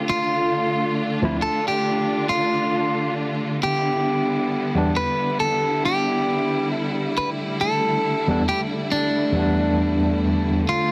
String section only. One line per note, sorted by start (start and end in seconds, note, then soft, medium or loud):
0.00 10.92 D3 medium
0.00 3.57 A3 medium
0.00 3.57 F4 medium
0.10 3.58 D4 medium
3.63 10.64 G3 medium
3.63 7.11 B3 medium
3.63 10.64 E4 medium
7.13 10.92 A3 medium
10.66 10.92 C4 medium
10.66 10.92 F4 medium